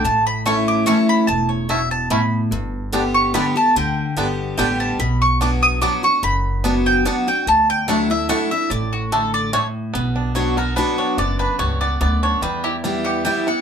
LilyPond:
<<
  \new Staff \with { instrumentName = "Mandolin" } { \time 3/4 \key b \minor \tempo 4 = 146 a''8 b''8 cis'''8 d'''8 cis'''8 b''8 | a''8 cis''8 e''8 a''8 b''8. r16 | r4. cis'''8 b''8 a''8 | g''4. r8 g''8 a''8 |
b''8 cis'''8 d'''8 ees'''8 d'''8 cis'''8 | b''4. g''8 fis''8 g''8 | a''8 g''8 fis''8 e''8 fis''8 e''8 | d''8 fis'8 a'8 d''8 cis''8 r8 |
r4 cis''8 bes'8 b'8 cis''8 | d''8 b'8 cis''8 d''8 d''8 cis''8 | b'8 g'8 r8 fis''8 g''8 fis''8 | }
  \new Staff \with { instrumentName = "Five-string banjo" } { \time 3/4 \key b \minor r4 <a cis' e'>8 r8 <a cis' e'>8 r8 | r4 <a cis' e'>8 r8 <a cis' e'>8 r8 | r4 <g b d'>8 r8 <g b d'>8 r8 | r4 <g b d'>8 r8 <g b d'>8 r8 |
r4 <b d'>8 r8 <b d'>8 r8 | r4 <b d'>8 r8 <b d'>8 r8 | r4 <a d'>8 r8 <a d'>8 r8 | r4 <a d'>8 r8 <a d'>8 r8 |
b8 d'8 b8 b8 d'8 d'8 | b8 d'8 b8 b8 b8 d'8 | g8 e'8 g8 g'8 g8 e'8 | }
  \new Staff \with { instrumentName = "Steel-string acoustic guitar" } { \time 3/4 \key b \minor << { r4 <e a cis' e'>4 <e a cis' e'>4 | r2. | r4 <d g b g'>4 <d g b g'>8 <b g'>8 | r4 <d g b g'>4 <d g b g'>4 |
r4 <fis b d' fis'>4 <fis b d' fis'>8 <d' fis'>8 | r4 <fis b d' fis'>4 <fis b d' fis'>8 <d' fis'>8 | r4 <fis a d' e'>8 <d' e'>8 <fis a d' e'>8 <d' e'>8 | r2. |
r4 <fis b d' fis'>8 fis'8 <fis b d' fis'>4 | r2. | r4 <e g b e'>4 <e g b e'>8 <b e'>8 | } \\ { a,2 r4 | e,4 b,4 a,4 | g,2 r4 | d2 r4 |
b,2 r4 | fis,2 r4 | d2 r4 | a,4 d4 a,4 |
b,2 r4 | fis,4 g,4 fis,4 | e,2 r4 | } >> }
  \new Staff \with { instrumentName = "Upright bass" } { \clef bass \time 3/4 \key b \minor a,,2. | e,,2. | g,,2. | d,4 g,,4 a,,4 |
b,,2. | fis,,2. | d,2. | a,,2. |
b,,2. | fis,,4 cis,4 d,4 | e,2. | }
>>